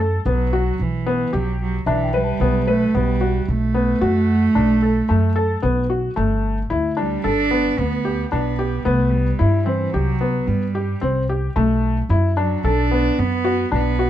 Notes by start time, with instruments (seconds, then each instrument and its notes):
Already playing: upright bass F#2
0.00 felt piano A4
0.26 upright bass B1, cello F#3, felt piano B3
0.53 felt piano F#4
0.79 upright bass B1, cello E3
1.06 felt piano B3
1.33 upright bass B1, cello F#3, felt piano G4
1.62 cello F#3
1.86 upright bass B1, cello E3, felt piano D4, celesta E5
2.04 celesta G5
2.14 cello G3, felt piano B4
2.24 celesta A5
2.40 upright bass B1, felt piano B3
2.67 cello A3, felt piano B4
2.94 upright bass B1, cello G3, felt piano B3
3.21 felt piano F#4
3.48 upright bass B1, cello A3
3.74 felt piano B3
4.01 upright bass F#2, felt piano F#4
4.55 upright bass B1, felt piano D4
4.82 felt piano A4
5.09 upright bass F#2, felt piano A3
5.36 felt piano A4
5.62 upright bass B1, felt piano B3
5.90 felt piano F#4
6.16 upright bass G1, felt piano A3
6.70 upright bass D2, felt piano E4
6.97 cello G3, felt piano D4
7.24 upright bass G1, cello D4, felt piano A4
7.51 felt piano B3
7.78 upright bass D2, cello B3
8.05 felt piano G4
8.32 upright bass B1, cello B3, felt piano D4
8.59 felt piano G4
8.85 upright bass C2, cello A3, felt piano B3
9.10 cello G3
9.39 upright bass G2, felt piano E4
9.65 cello E3, felt piano C4
9.92 upright bass C2, cello F#3, felt piano G4
10.21 felt piano B3
10.47 upright bass G2, cello G3
10.75 felt piano G4
11.01 upright bass C2, felt piano C4
11.29 felt piano G4
11.56 upright bass B1, felt piano A3
12.09 upright bass F#2, felt piano E4
12.37 cello F#3, felt piano D4
12.64 upright bass B1, cello D4, felt piano A4
12.91 felt piano B3
13.19 upright bass F#2, cello B3
13.45 felt piano F#4
13.72 upright bass B1, cello B3, felt piano D4
13.99 felt piano F#4